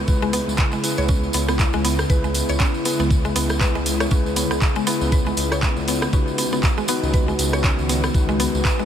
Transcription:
Already playing: ambient pad C#3 G#3 B3 E4
0.08 analog synth bass C#2, tine electric piano E4 G#4 B4, kick, tambourine
0.22 synth arpeggio sound G#3, tambourine
0.33 synth arpeggio sound B3, open hi-hat, tambourine
0.48 analog synth bass C#2, tambourine
0.58 synth arpeggio sound B4, kick, clap, tambourine
0.72 synth arpeggio sound G#3, tambourine
0.84 tine electric piano E4 G#4 B4, open hi-hat, tambourine
0.97 analog synth bass C#2, synth arpeggio sound C#5, tambourine
1.08 synth arpeggio sound C#4, kick, tambourine
1.23 tambourine
1.33 analog synth bass C#2, synth arpeggio sound B3, open hi-hat, tambourine
1.48 synth arpeggio sound B3, cross-stick, tambourine
1.59 kick, clap, tambourine
1.73 analog synth bass C#2, synth arpeggio sound G#3, tambourine
1.85 synth arpeggio sound B3, open hi-hat, tambourine
1.99 cross-stick, tambourine
2.10 analog synth bass C#2, tine electric piano E4 G#4 B4, synth arpeggio sound B4, kick, tambourine
2.24 synth arpeggio sound G#3, tambourine
2.34 open hi-hat, tambourine
2.49 analog synth bass C#2, synth arpeggio sound C#5, tambourine
2.60 synth arpeggio sound C#4, kick, clap, tambourine
2.74 tambourine
2.85 synth arpeggio sound B3, tine electric piano E4 G#4 B4, open hi-hat, tambourine
2.99 analog synth bass C#2, synth arpeggio sound B3, tambourine
3.11 kick, tambourine
3.25 synth arpeggio sound G#3, tambourine
3.35 analog synth bass C#2, synth arpeggio sound B3, open hi-hat, tambourine
3.49 cross-stick, tambourine
3.61 synth arpeggio sound B4, kick, clap, tambourine
3.75 analog synth bass C#2, synth arpeggio sound G#3, tambourine
3.86 open hi-hat, tambourine
4.00 synth arpeggio sound C#5, cross-stick, tambourine
4.11 analog synth bass C#2, synth arpeggio sound C#4, tine electric piano E4 G#4 B4, kick, tambourine
4.26 tambourine
4.36 synth arpeggio sound B3, open hi-hat, tambourine
4.51 analog synth bass C#2, synth arpeggio sound B3, cross-stick, tambourine
4.62 kick, clap, tambourine
4.75 synth arpeggio sound G#3, tambourine
4.87 synth arpeggio sound B3, tine electric piano E4 G#4 B4, open hi-hat, tambourine
5.01 analog synth bass C#2, tambourine
5.12 synth arpeggio sound B4, kick, tambourine
5.26 synth arpeggio sound G#3, tambourine
5.37 analog synth bass C#2, open hi-hat, tambourine
5.52 synth arpeggio sound C#5, cross-stick, tambourine
5.63 synth arpeggio sound C#4, kick, clap, tambourine
5.76 analog synth bass C#2, tambourine
5.88 synth arpeggio sound B3, open hi-hat, tambourine
6.02 synth arpeggio sound B3, cross-stick, tambourine
6.13 analog synth bass C#2, ambient pad D#3 F#4, synth arpeggio sound C#4, tine electric piano D#4 F#4 B4, kick, tambourine
6.28 tambourine
6.38 synth arpeggio sound B3, open hi-hat, tambourine
6.52 analog synth bass C#2, synth arpeggio sound B3, tambourine
6.63 kick, clap, tambourine
6.78 synth arpeggio sound G#3, tambourine
6.88 synth arpeggio sound B3, tine electric piano D#4 F#4 B4, open hi-hat, tambourine
7.03 analog synth bass C#2, tambourine
7.13 synth arpeggio sound B4, kick, tambourine
7.28 synth arpeggio sound G#3, tambourine
7.39 analog synth bass C#2, open hi-hat, tambourine
7.53 synth arpeggio sound C#5, cross-stick, tambourine
7.64 synth arpeggio sound C#4, kick, clap, tambourine
7.78 analog synth bass C#2, tambourine
7.89 synth arpeggio sound B3, open hi-hat, tambourine
8.04 synth arpeggio sound B3, cross-stick, tambourine
8.14 analog synth bass C#2, tine electric piano D#4 F#4 B4, kick, tambourine
8.29 synth arpeggio sound G#3, tambourine
8.40 synth arpeggio sound B3, open hi-hat, tambourine
8.54 analog synth bass C#2, tambourine
8.65 synth arpeggio sound B4, kick, clap, tambourine
8.79 synth arpeggio sound G#3, tambourine

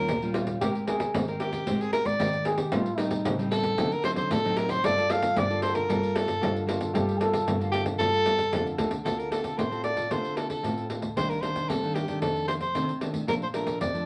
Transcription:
Already playing: soprano saxophone A#4
0.08 cello D#2, nylon-string guitar A#2, pandeiro
0.22 nylon-string guitar G3 C#4 F4, pandeiro
0.34 trombone F4, pandeiro
0.47 pandeiro
0.61 cello G#2, nylon-string guitar G#3 C4 G4 A#4, trombone G4, pandeiro
0.75 pandeiro
0.87 nylon-string guitar C4 G4 A#4, trombone G#4, pandeiro
1.00 pandeiro
1.14 cello G#2, nylon-string guitar D#3, pandeiro
1.28 nylon-string guitar C4 G4 A#4, pandeiro
1.40 soprano saxophone G4, pandeiro
1.53 pandeiro
1.67 cello G#2, nylon-string guitar G#3 C4 G4 A#4, pandeiro
1.81 soprano saxophone G#4, pandeiro
1.93 soprano saxophone A#4, pandeiro
2.05 cello G#2, soprano saxophone D5, pandeiro
2.19 cello G#2, nylon-string guitar D#3 C4 G4 A#4, pandeiro
2.33 pandeiro
2.45 nylon-string guitar C4 G4 A#4, trombone G#4, pandeiro
2.58 trombone G4, pandeiro
2.72 nylon-string guitar A2 G3 C4 D#4, cello A2, trombone F4, pandeiro
2.86 pandeiro
2.98 nylon-string guitar G3 C4 D#4, trombone D#4, pandeiro
3.11 pandeiro
3.25 nylon-string guitar A2, cello C#3, pandeiro
3.39 nylon-string guitar G3 C4 D#4, pandeiro
3.51 soprano saxophone A4, pandeiro
3.63 pandeiro
3.78 nylon-string guitar D3 F#3 C4 D#4, cello D3, pandeiro
3.92 soprano saxophone A#4, pandeiro
4.03 nylon-string guitar F#3 C4 D#4, soprano saxophone C5, pandeiro
4.16 cello D3, soprano saxophone C5, pandeiro
4.31 cello A2, nylon-string guitar A2, soprano saxophone A4, pandeiro
4.45 nylon-string guitar F#3 C4 D#4, pandeiro
4.57 soprano saxophone A#4, pandeiro
4.69 soprano saxophone C5, pandeiro
4.83 cello G2, nylon-string guitar G3 A#3 F4 A4, soprano saxophone D5, pandeiro
4.97 nylon-string guitar A#3 F4 A4, pandeiro
5.09 nylon-string guitar A#3 F4 A4, soprano saxophone F5, pandeiro
5.22 pandeiro
5.36 cello G2, nylon-string guitar D3, soprano saxophone D5, pandeiro
5.50 nylon-string guitar A#3 F4 A4, pandeiro
5.62 soprano saxophone C5, pandeiro
5.75 soprano saxophone A#4, pandeiro
5.88 cello G2, nylon-string guitar G3 A#3 F4 A4, pandeiro
6.03 pandeiro
6.16 soprano saxophone A4, pandeiro
6.27 cello G2, pandeiro
6.41 cello G2, nylon-string guitar D3 A#3 F4 A4, pandeiro
6.56 pandeiro
6.67 nylon-string guitar A#3 F4 A4, trombone F4, pandeiro
6.81 pandeiro
6.94 cello G2, nylon-string guitar G3 A#3 F4 A4, trombone G4, pandeiro
7.09 pandeiro
7.20 nylon-string guitar A#3 F4 A4, trombone A4, pandeiro
7.34 pandeiro
7.47 cello G2, nylon-string guitar D3, pandeiro
7.60 nylon-string guitar A#3 F4 A4, pandeiro
7.72 soprano saxophone G4, pandeiro
7.86 pandeiro
7.99 cello G2, nylon-string guitar G3 A#3 F4 A4, soprano saxophone A4, pandeiro
8.14 pandeiro
8.25 cello G2, pandeiro
8.38 pandeiro
8.52 cello F2, nylon-string guitar D3 A#3 F4 A4, pandeiro
8.67 pandeiro
8.78 cello D2, nylon-string guitar A#3 F4 A4, pandeiro
8.91 pandeiro
9.05 cello D2, nylon-string guitar D3 C4 F4 A4, soprano saxophone A4, pandeiro
9.19 soprano saxophone A#4, pandeiro
9.30 nylon-string guitar C4 F4 A4, soprano saxophone A4, pandeiro
9.44 pandeiro
9.58 nylon-string guitar A2, cello A2, soprano saxophone C5, pandeiro
9.71 nylon-string guitar C4 F4 A4, pandeiro
9.84 soprano saxophone D5, pandeiro
9.96 nylon-string guitar C4 F4 A4, pandeiro
10.11 cello A2, nylon-string guitar D3 C4 F4 A4, soprano saxophone C5, pandeiro
10.25 pandeiro
10.37 soprano saxophone A4, pandeiro
10.50 soprano saxophone A4, pandeiro
10.63 nylon-string guitar A2 C4 F4 A4, cello A2, pandeiro
10.78 pandeiro
10.89 nylon-string guitar C4 F4 A4, pandeiro
11.02 cello D2, pandeiro
11.16 cello C2, nylon-string guitar C3 D#3 A#3 D4, soprano saxophone C5, pandeiro
11.30 soprano saxophone A#4, pandeiro
11.42 nylon-string guitar D#3 A#3 D4, soprano saxophone C5, pandeiro
11.56 pandeiro
11.69 nylon-string guitar G2, cello C3, soprano saxophone A4, pandeiro
11.83 nylon-string guitar D#3 A#3 D4, pandeiro
11.95 soprano saxophone G4, pandeiro
12.08 nylon-string guitar D#3 A3 D4, pandeiro
12.22 cello F2, nylon-string guitar F2, soprano saxophone A4, pandeiro
12.36 pandeiro
12.48 soprano saxophone C5, pandeiro
12.61 soprano saxophone C5, pandeiro
12.75 nylon-string guitar C3 D#3 A3 D4, cello C3, pandeiro
12.89 pandeiro
13.01 nylon-string guitar D#3 A3 D4, pandeiro
13.13 cello A2, pandeiro
13.27 nylon-string guitar A#2 F3 A3 D4, cello A#2, soprano saxophone A#4, pandeiro
13.42 soprano saxophone C5, pandeiro
13.53 nylon-string guitar F3 A3 D4, soprano saxophone A#4, pandeiro
13.67 pandeiro
13.80 nylon-string guitar F2, cello F2, soprano saxophone D5, pandeiro
13.94 nylon-string guitar F3 A3 D4, pandeiro

